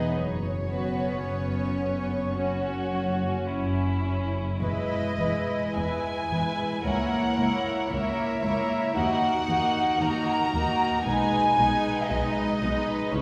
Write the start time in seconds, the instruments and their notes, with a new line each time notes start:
Already playing: viola section B3 D#4, violin section G#4 B4 D#5
0.12 double bass section F#1, cello section F#2, violin section C#5
0.69 viola section B3 C#4, violin section F#4 B4
1.24 double bass section F#1, cello section F#2, violin section C#4
1.81 viola section B3 C#4
2.37 double bass section F#1, cello section F#2, viola section C#4, violin section F#4
2.93 viola section C#4
3.48 double bass section F#1, cello section F#2, violin section E4
4.05 viola section C#4
4.61 double bass section E1, cello section E2, viola section G#3 E4, violin section B4 D#5
5.18 double bass section E1, cello section E2, viola section G#3 E4, violin section B4
5.75 double bass section E1, cello section E2, viola section G#3 E4, violin section B4 G#5
6.30 double bass section E1, cello section E2, viola section G#3 E4, violin section B4
6.84 cello section C#2, double bass section C#2, viola section A#3 E4, violin section A#4 C#5 F#5
7.37 cello section C#2, double bass section C#2, viola section A#3 E4, violin section A#4 C#5
7.89 cello section C#2, double bass section C#2, viola section A#3 E4, violin section A#4 C#5 E5
8.42 cello section C#2, double bass section C#2, viola section A#3 E4, violin section A#4 C#5
8.95 double bass section D#2, cello section D#2, viola section A#3 D#4, violin section F#4 A#4 F#5
9.48 cello section D#2, double bass section D#2, viola section A#3 D#4, violin section F#4 A#4
10.00 cello section D#2, double bass section D#2, viola section A#3 D#4, violin section F#4 A#4 A#5
10.53 cello section D#2, double bass section D#2, viola section A#3 D#4, violin section F#4 A#4
11.05 double bass section B1, cello section B2, viola section G#3 D#4, violin section D#4 B4 G#5
11.57 double bass section B1, cello section B2, viola section G#3 D#4, violin section D#4 B4
12.09 double bass section B1, cello section B2, viola section G#3 D#4, violin section D#4 B4 D#5
12.61 double bass section B1, cello section B2, viola section G#3 D#4, violin section D#4 B4
13.13 double bass section C#2, cello section C#3, viola section G#3 C#4, violin section E4 B4 C#5